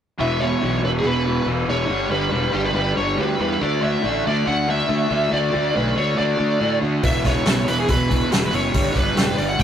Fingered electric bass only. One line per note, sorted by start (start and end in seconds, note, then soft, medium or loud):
0.20 0.54 E1 medium
0.62 0.79 B1 medium
0.83 1.00 E1 medium
1.04 1.39 E1 medium
1.46 1.64 E1 medium
1.68 1.86 E1 medium
1.89 2.07 G1 medium
2.10 2.28 G1 medium
2.32 2.50 E1 medium
2.54 2.71 G1 medium
2.74 2.92 G1 medium
2.96 3.14 G1 medium
3.17 3.35 D2 medium
3.40 3.57 E2 medium
3.61 3.96 D2 medium
4.04 4.21 A1 medium
4.26 4.43 D2 medium
4.47 4.81 D2 medium
4.89 5.06 D2 medium
5.11 5.28 D2 medium
5.32 5.49 D2 medium
5.55 5.71 D2 medium
5.76 5.93 B1 medium
5.97 6.14 D2 medium
6.19 6.36 D2 medium
6.39 6.56 D2 medium
6.61 6.78 A2 medium
6.82 6.99 D2 medium
7.03 7.38 E1 medium
7.47 7.63 B1 medium
7.68 7.84 E1 medium
7.89 8.23 E1 medium
8.31 8.48 E1 medium
8.53 8.69 F#1 medium
8.74 8.91 G1 medium
8.96 9.12 G1 medium
9.17 9.34 E1 medium
9.39 9.55 G1 medium
9.59 9.63 G1 medium